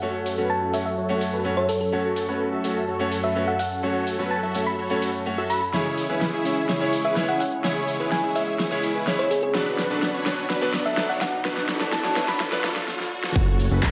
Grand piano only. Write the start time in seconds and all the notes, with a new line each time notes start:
0.02 A3 C#4 F#4 C#5
0.37 A3 C#4 F#4 C#5
0.73 A3 C#4 F#4 C#5
1.09 A3 C#4 F#4 C#5
1.45 A3 C#4 F#4 C#5
1.92 A3 C#4 F#4 C#5
2.28 A3 C#4 F#4 C#5
2.64 A3 C#4 F#4 C#5
2.99 A3 C#4 F#4 C#5
3.35 A3 C#4 F#4 C#5
3.83 A3 C#4 F#4 C#5
4.18 A3 C#4 F#4 C#5
4.54 A3 C#4 F#4 C#5
4.90 A3 C#4 F#4 C#5
5.26 A3 C#4 F#4 C#5
5.73 C#3 G#3 C#4 E4 C#5
6.09 C#3 G#3 C#4 E4 C#5
6.45 C#3 G#3 C#4 E4 C#5
6.80 C#3 G#3 C#4 E4 C#5
7.16 C#3 G#3 C#4 E4 C#5
7.64 C#3 G#3 C#4 E4 C#5
7.99 C#3 G#3 C#4 E4 C#5
8.35 C#3 G#3 C#4 E4 C#5
8.71 C#3 G#3 C#4 E4 C#5
9.06 C#3 G#3 C#4 E4 C#5
9.54 B2 F#3 B3 D4 B4
9.90 B2 F#3 B3 D4 B4
10.25 B2 F#3 B3 D4 B4
10.61 B2 F#3 B3 D4 B4
10.97 B2 F#3 B3 D4 B4
11.45 B2 F#3 B3 D4 B4
11.80 B2 F#3 B3 D4 B4
12.16 B2 F#3 B3 D4 B4
12.52 B2 F#3 B3 D4 B4
12.64 B2 F#3 B3 D4 A4